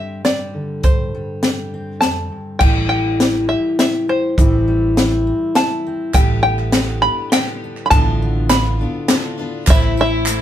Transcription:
Already playing: G2 D3 G3 C4 G4 E5
0.25 G3 D5, snare, closed hi-hat
0.54 D3
0.83 G2 C5, kick, closed hi-hat
1.15 G3
1.43 G4, snare, closed hi-hat
1.74 C4
2.01 F2 A5, snare, closed hi-hat
2.32 G2
2.59 A1 A2 E3 G3 G5, kick, crash
2.63 G4
2.89 G3 G5
3.20 G4, snare, closed hi-hat
3.49 G4 E5
3.79 G4 E5, snare, closed hi-hat
4.08 G4 C5
4.38 A1 A2 E3 G3 C4 E4, kick, closed hi-hat
4.68 G3
4.97 E4, snare, closed hi-hat
5.27 C4
5.55 E4 A5, snare, closed hi-hat
5.87 C4
6.13 A1 A2 D3 G3 B3 G4 G5, kick, clap, closed hi-hat
6.43 B3 G5
6.59 clap
6.72 D3 G3 B3 G4, snare, clap, closed hi-hat
6.89 clap
7.02 G3 B3 D4 G4 B5
7.32 D3 G3 B3 G4 G5, snare, clap, closed hi-hat
7.48 clap
7.64 D4
7.77 clap
7.86 B5
7.90 A1 A2 D3 B3 D4 F4 A5, kick, clap, closed hi-hat
7.95 F4
8.22 B3
8.49 D3 B3 D4 F4 B5, snare, clap, closed hi-hat
8.79 B3 D4 F4
9.08 D3 B3 D4 F4, snare, clap, closed hi-hat
9.23 clap
9.38 B3 D4 F4
9.67 A1 A2 E3 A3 C4 E4 E5, kick, clap, closed hi-hat, tambourine
9.83 clap
9.97 E4 E5, tambourine
10.26 E3 A3 C4 E4, clap, closed hi-hat

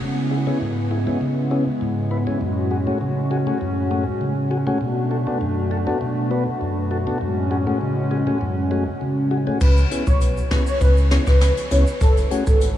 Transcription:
0.01 C#3 G#3 B3 E4
0.31 E4 G#4
0.47 B3 C#4 E4 G#4
0.61 G#2
0.91 E4 G#4
1.07 B3 C#4 E4 G#4
1.21 C#3
1.51 B3 C#4 E4 G#4
1.81 G#2
2.11 E4 B4
2.27 B3 C#4 E4 G#4
2.41 F#2 A2 C#4 F#4
2.71 F#4 G#4
2.87 A3 C#4 F#4 G#4
3.01 C#3
3.31 F#4 G#4
3.47 A3 C#4 F#4 G#4
3.61 F#2
3.91 A3 C#4 F#4 G#4
4.21 C#3
4.51 F#4 G#4
4.67 A3 C#4 F#4 G#4
4.81 B2 A3 D4 F#4
5.11 F#4 A4
5.27 B3 D4 F#4 A4
5.41 F#2
5.71 F#4 A4
5.87 B3 D4 F#4 A4
6.01 B2
6.31 B3 D4 F#4 B4
6.61 F#2
6.91 F#4 A4
7.07 B3 D4 F#4 A4
7.21 F#2 A2 G#3 C#4
7.51 F#4 G#4
7.67 A3 C#4 F#4 G#4
7.81 C#3
8.11 F#4 G#4
8.27 A3 C#4 F#4 G#4
8.41 F#2
8.71 A3 C#4 F#4 G#4
9.01 C#3
9.31 F#4 G#4
9.47 A3 C#4 F#4 G#4
9.61 C#2 B4, kick, crash, shaker
9.77 shaker
9.91 B3 C#4 E4 G#4, closed hi-hat
10.07 B1 C#5, kick, shaker
10.21 closed hi-hat, shaker
10.37 shaker
10.51 B3 C#4 E4 G#4 B4, kick, cross-stick, snare, closed hi-hat
10.67 C#5, shaker
10.81 C#2 B4, kick, closed hi-hat, shaker
10.97 shaker
11.11 B3 C#4 E4 G#4, cross-stick, snare, closed hi-hat
11.27 C#2 B4, kick, cross-stick, shaker
11.41 B4, snare, closed hi-hat, shaker
11.57 closed hi-hat, shaker
11.71 C#2 B3 C#4 E4 G#4 C#5, closed hi-hat, shaker
11.87 shaker
12.01 F#1 A4, kick, closed hi-hat, shaker
12.17 closed hi-hat, shaker
12.31 A3 C#4 F#4 G#4, closed hi-hat
12.47 G#1 A4, kick, shaker
12.61 closed hi-hat, shaker

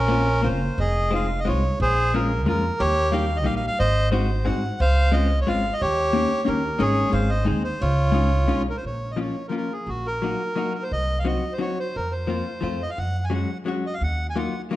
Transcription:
Already playing: A#1 C#4 A#4
0.08 A#3 C4 C#4 F4
0.42 F#1 A#3 C4 C#4 F4 C5
0.78 F1 G#4 D#5
1.11 G#3 C4 D#4 F4 F5
1.40 D#5
1.45 C2 G#3 C4 D#4 F4 C#5
1.80 A#1 G#4 C5
2.14 G#3 A#3 C#4 F4 A#4
2.46 F2 G#3 A#3 C#4 F4 A#4
2.80 D#2 G4 C#5
3.12 G3 A#3 D#4 G4 F5
3.36 D#5
3.44 A#1 G3 A#3 D#4 G4 F5
3.56 F5
3.67 F5
3.79 G#1 C5 D#5
4.11 G#3 C4 D#4 F#4 C5
4.45 G#2 G#3 C4 D#4 F#4 F#5
4.80 C#2 C5 F5
5.12 G#3 C4 C#4 F4 D#5
5.41 C#5
5.47 G#1 G#3 C4 C#4 F4 F5
5.73 D#5
5.81 D#2 G4 C#5
6.13 A#3 C#4 D#4 G4
6.45 D#2 A#3 C#4 D#4 G4 A#4
6.79 G#1 G#3 C#4 D#4 G#4 C#5
7.09 G#1 G#3 C4 D#4 G#4 F5
7.14 C5
7.29 D#5
7.45 D#2 G#3 C4 D#4 G#4 C5
7.64 C5
7.81 C#2 F4 C#5
8.12 G#3 C#4 D#4 F4
8.48 B1 G#3 C#4 D#4 F4
8.70 A#4
8.77 C5
8.84 A#1 C#5
9.11 D#5
9.16 F3 A#3 C#4 F4
9.21 C#5
9.48 F3 A#3 C#4 A#4
9.52 F4
9.57 A#4
9.73 G#4
9.87 A#1 F#4
10.06 A#4
10.22 F#3 A#3 D#4 F#4
10.55 F#3 A#3 D#4 F#4
10.75 A#4
10.83 C5
10.92 C2 D#5
11.19 F5
11.25 F#3 C4 D#4 F#4 D#5
11.53 C5
11.58 F#3 C4 D#4 F#4 C#5
11.80 C5
11.96 F2 A#4
12.11 C5
12.27 F3 A#3 C4 F4
12.61 F2 F3 A3 C4 F4
12.82 D#5
12.90 F5
12.98 F#2 F#5
13.24 G#5
13.30 F#3 G#3 C#4 F#4 F#5
13.66 F#3 G#3 C#4 F#4
13.86 D#5
13.94 F5
14.01 D#2 F#5
14.30 G#5
14.36 F#3 A#3 D#4 F4 F#5
14.71 F#3 A#3 D#4 F4

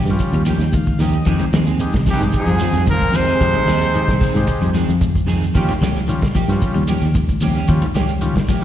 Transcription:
0.05 G2, snare, closed hi-hat, shekere
0.10 G3 C#4 F4
0.19 kick, closed hi-hat, high conga, shekere
0.33 D#2 G3, shekere
0.45 D#3 F3 A#3 C#4 G4, closed hi-hat, high conga, shekere
0.50 G5
0.58 D#2, snare, closed hi-hat, shekere
0.72 D#3 F5, kick, closed hi-hat, high conga, shekere
0.86 kick, shekere
0.99 D#2 D#3 F3 A#3 C#4 G4 D#5, open hi-hat, low conga, shekere
1.13 closed hi-hat, shekere
1.25 F2 D#3 G#3 C4 D#4 G4 G#4, kick, closed hi-hat, shekere
1.40 D#3, high conga, shekere
1.53 D#2 F3 G#3 C4 G#4, snare, closed hi-hat, shekere
1.66 G#3 C4 G#4, closed hi-hat, shekere
1.79 D#3 G#3 D#4 G4, closed hi-hat, high conga, shekere
1.93 C2, kick, snare, high conga, shekere
2.06 D#3 F3 G#3 C4 G#4, kick, open hi-hat, low conga, shekere
2.10 G2 D#3 G4
2.20 G#2 G#3 D#4 G4, snare, closed hi-hat, shekere
2.32 G#4, kick, closed hi-hat, high conga, shekere
2.38 G#2 F3
2.46 F2 G3, shekere
2.59 D#3 F3 G#3 C4 G#4, snare, closed hi-hat, high conga, shekere
2.73 F2, snare, shekere
2.85 D#3, kick, closed hi-hat, high conga, shekere
2.90 A#2 F3 A#4
3.00 kick, high conga, shekere
3.12 F2 D#3 F3 G#3 C4 G#4, open hi-hat, low conga, shekere
3.16 C3 G#3 C5
3.27 G#3 C4 G#4, closed hi-hat, shekere
3.40 F2 D#3 G#3 D#4 G4, kick, closed hi-hat, shekere
3.54 D#3, high conga, shekere
3.66 D#2 D#3 F3 G#3 C4 G#4, snare, closed hi-hat, low conga, shekere
3.82 snare, closed hi-hat, shekere
3.94 D#3 G#3 D#4 G4, closed hi-hat, shekere
4.08 C2, kick, snare, high conga, shekere
4.20 D#3 G#3 C4 G#4, kick, open hi-hat, high conga, low conga, shekere
4.34 G#2 G#3 D#4 G4, snare, closed hi-hat, shekere
4.47 kick, closed hi-hat, high conga, shekere
4.61 F2 G3, shekere
4.74 D#3 F3 G#3 C4 G#4, snare, closed hi-hat, high conga, shekere
4.89 F2, closed hi-hat, shekere
5.01 kick, closed hi-hat, high conga, shekere
5.15 kick, high conga, shekere
5.26 F2 D#3 F3 G#3 C4 G#4, open hi-hat, low conga, shekere
5.42 closed hi-hat, shekere
5.55 D#2 G3 A#3 C#4 F4 G4, muted clean electric guitar stroke, kick, closed hi-hat, high conga, shekere
5.68 D#3, snare, high conga, shekere
5.81 C#2 F3 A#3 C#4 G4, snare, closed hi-hat, shekere
5.96 snare, closed hi-hat, shekere
6.08 D#3 G3 C#4 F4, closed hi-hat, high conga, shekere
6.21 A#1, kick, snare, high conga, shekere
6.35 F3 A#3 G4, muted clean electric guitar stroke, kick, open hi-hat, high conga, low conga, shekere
6.48 G2 G3 C#4 F4, snare, closed hi-hat, shekere
6.61 muted fingered electric bass stroke, kick, closed hi-hat, high conga, shekere
6.74 D#2 G3, shekere
6.88 F3 A#3 C#4 G4, snare, closed hi-hat, high conga, shekere
7.01 D#2, snare, shekere
7.14 muted clean electric guitar stroke, kick, closed hi-hat, high conga, low conga, shekere
7.28 kick, high conga, shekere
7.41 D#2 F3 A#3 C#4 G4, open hi-hat, low conga, shekere
7.55 C#4 G4, snare, closed hi-hat, shekere
7.68 D#2 D#3 G3 C#4 F4, kick, closed hi-hat, shekere
7.82 D#3, high conga, shekere
7.95 C#2 F3 A#3 C#4 G4, snare, closed hi-hat, shekere
8.09 closed hi-hat, shekere
8.21 D#3 G3 C#4 F4, closed hi-hat, high conga, shekere
8.35 A#1, kick, snare, high conga, shekere
8.48 F3 A#3 C#4 G4, kick, open hi-hat, high conga, low conga, shekere

